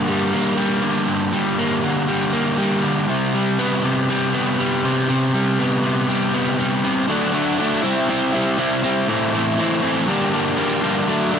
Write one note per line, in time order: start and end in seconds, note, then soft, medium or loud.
0.00 0.33 G2 medium
0.00 0.81 D3 medium
0.00 0.31 A#3 medium
0.08 0.57 G3 medium
0.33 1.57 A#3 medium
0.57 1.32 G3 medium
0.82 1.82 D3 medium
1.08 2.33 G2 medium
1.33 2.08 G3 medium
1.58 2.32 A#3 medium
1.83 2.82 D3 medium
2.09 2.58 G3 medium
2.33 3.09 A#3 medium
2.58 3.34 G3 medium
2.84 3.08 D3 medium
3.09 3.82 C3 medium
3.34 4.08 G3 medium
3.58 4.32 B3 medium
3.84 4.83 C3 medium
4.09 4.58 G3 medium
4.33 5.58 B3 medium
4.59 5.33 G3 medium
4.84 5.08 C3 medium
5.10 5.82 C3 medium
5.34 6.07 G3 medium
5.59 6.33 B3 medium
5.83 6.83 C3 medium
6.08 6.58 G3 medium
6.34 7.09 B3 medium
6.59 7.09 G3 medium
6.84 7.07 C3 medium
7.08 7.57 D3 medium
7.08 7.35 F#3 loud
7.08 7.34 A3 loud
7.08 7.32 D4 loud
7.33 7.59 F#3 medium
7.33 7.59 A3 medium
7.33 7.60 D4 medium
7.59 7.82 D3 medium
7.59 7.83 F#3 medium
7.59 7.83 A3 medium
7.59 7.83 D4 medium
7.83 8.07 C3 medium
7.83 8.08 G3 medium
7.83 8.09 C4 medium
7.83 8.09 E4 medium
8.08 8.56 C3 medium
8.08 8.34 G3 medium
8.08 8.33 C4 medium
8.08 8.31 E4 medium
8.33 8.57 G3 medium
8.33 8.58 C4 medium
8.33 8.59 E4 medium
8.58 8.84 C3 medium
8.58 8.84 G3 medium
8.58 8.83 C4 medium
8.58 8.82 E4 medium
8.83 9.08 C3 medium
8.83 9.08 G3 medium
8.83 9.07 C4 loud
8.83 9.07 E4 loud
9.09 9.58 A2 medium
9.09 9.57 E3 loud
9.09 9.36 A3 medium
9.09 9.34 C4 loud
9.09 9.32 E4 loud
9.33 9.58 A3 medium
9.33 9.59 C4 medium
9.33 9.60 E4 medium
9.58 9.83 E3 medium
9.58 9.82 A3 medium
9.58 9.82 C4 medium
9.58 9.81 E4 medium
9.82 10.07 A2 medium
9.82 10.07 E3 medium
9.82 10.07 A3 medium
9.82 10.07 C4 medium
9.82 10.06 E4 medium
10.07 10.57 G2 loud
10.07 10.55 D3 loud
10.07 10.34 G3 loud
10.07 10.32 A#3 loud
10.07 10.31 D4 loud
10.32 10.56 G3 medium
10.32 10.57 A#3 medium
10.32 10.58 D4 medium
10.56 10.82 D3 medium
10.56 10.82 G3 medium
10.56 10.81 A#3 medium
10.56 10.80 D4 medium
10.81 11.07 G2 medium
10.81 11.05 D3 loud
10.81 11.06 G3 loud
10.81 11.06 A#3 loud
10.81 11.05 D4 loud
11.06 11.39 D3 medium
11.06 11.33 F#3 loud
11.06 11.32 A3 loud
11.06 11.30 D4 loud
11.31 11.39 F#3 medium
11.31 11.39 A3 medium
11.31 11.39 D4 medium